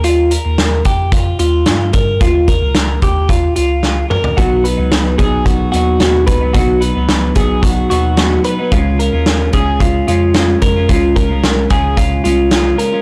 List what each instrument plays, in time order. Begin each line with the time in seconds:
Already playing: tine electric piano D#2
0.04 clean electric guitar F4, closed hi-hat
0.31 clean electric guitar A#4, closed hi-hat
0.46 tine electric piano D#2
0.58 snare, closed hi-hat
0.85 tine electric piano F2, clean electric guitar G4, kick, closed hi-hat
1.12 clean electric guitar F4, kick, closed hi-hat
1.39 tine electric piano D#2, clean electric guitar F4, closed hi-hat
1.66 tine electric piano G2, snare, closed hi-hat
1.93 tine electric piano G2, clean electric guitar A#4, kick, closed hi-hat
2.21 tine electric piano D#2, clean electric guitar F4, kick, closed hi-hat
2.48 clean electric guitar A#4, kick, closed hi-hat
2.62 tine electric piano C#2
2.75 snare, closed hi-hat
3.02 tine electric piano D#2, clean electric guitar G4, kick, closed hi-hat
3.29 clean electric guitar F4, kick, closed hi-hat
3.56 tine electric piano C#2, clean electric guitar F4, closed hi-hat
3.83 snare
4.10 clean electric guitar A#4, mid tom
4.24 floor tom
4.37 tine electric piano B1, clean electric guitar B2 F#3 B3 D#4 F#4, kick, closed hi-hat
4.64 clean electric guitar B4, closed hi-hat
4.77 tine electric piano C#2, clean electric guitar F#3 B3 D#4
4.92 snare, closed hi-hat
5.18 clean electric guitar B2 F#3 B3 D#4 G#4, kick, closed hi-hat
5.45 clean electric guitar F#4, kick, closed hi-hat
5.72 tine electric piano D#2, clean electric guitar B2 F#3 B3 D#4 F#4, closed hi-hat
6.00 tine electric piano D#2, clean electric guitar B2 F#3 B3 D#4, snare, closed hi-hat
6.27 tine electric piano C#2, clean electric guitar B4, kick, closed hi-hat
6.41 clean electric guitar F#3 B3 D#4
6.53 tine electric piano B1, clean electric guitar B2 F#3 B3 D#4 F#4, kick, closed hi-hat
6.81 clean electric guitar B4, closed hi-hat
6.95 tine electric piano C#2, clean electric guitar F#3 B3 D#4
7.09 snare, closed hi-hat
7.35 tine electric piano B1, clean electric guitar B2 F#3 B3 D#4 G#4, kick, closed hi-hat
7.62 clean electric guitar F#4, kick, closed hi-hat
7.90 tine electric piano D#2, clean electric guitar B2 F#3 B3 D#4 F#4, closed hi-hat
8.17 clean electric guitar B2 F#3 B3 D#4, snare, closed hi-hat
8.44 clean electric guitar B4, closed hi-hat
8.59 clean electric guitar F#3 B3 D#4
8.72 tine electric piano C#2, clean electric guitar C#3 G#3 C#4 F4, kick, closed hi-hat
8.99 clean electric guitar A#4, closed hi-hat
9.12 tine electric piano D#2, clean electric guitar G#3 C#4 F4
9.26 snare, closed hi-hat
9.53 tine electric piano C#2, clean electric guitar C#3 G#3 C#4 F4 G#4, kick, closed hi-hat
9.80 clean electric guitar F4, kick, closed hi-hat
10.07 tine electric piano F2, clean electric guitar C#3 G#3 C#4 F4, closed hi-hat
10.34 clean electric guitar C#3 G#3 C#4 F4, snare, closed hi-hat
10.62 tine electric piano F2, clean electric guitar A#4, kick, closed hi-hat
10.76 clean electric guitar G#3 C#4 F4
10.89 tine electric piano C#2, clean electric guitar C#3 G#3 C#4 F4, kick, closed hi-hat
11.16 clean electric guitar A#4, kick, closed hi-hat
11.29 tine electric piano C2, clean electric guitar G#3 C#4 F4
11.44 snare, closed hi-hat
11.70 tine electric piano C#2, clean electric guitar C#3 G#3 C#4 F4 G#4, kick, closed hi-hat
11.97 clean electric guitar F4, kick, closed hi-hat
12.24 tine electric piano C2, clean electric guitar C#3 G#3 C#4 F4, closed hi-hat
12.51 clean electric guitar C#3 G#3 C#4 F4, snare, closed hi-hat
12.78 clean electric guitar A#4, closed hi-hat
12.92 clean electric guitar G#3 C#4 F4